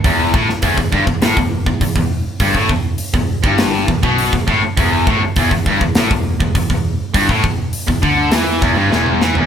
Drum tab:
HH |o---o---o---o---|o---o---o---o---|o---o---o---o---|o---o---o-------|
SD |---o----o-------|--------o-------|--------o-------|--------o---o-o-|
T2 |----------------|----------------|----------------|-------------o--|
FT |----------------|----------------|----------------|---------------o|
BD |o-o-oooo-o-ooo--|ooo--o-o--oo-oo-|o-o-oooo-o-ooo--|ooo--oo---o-----|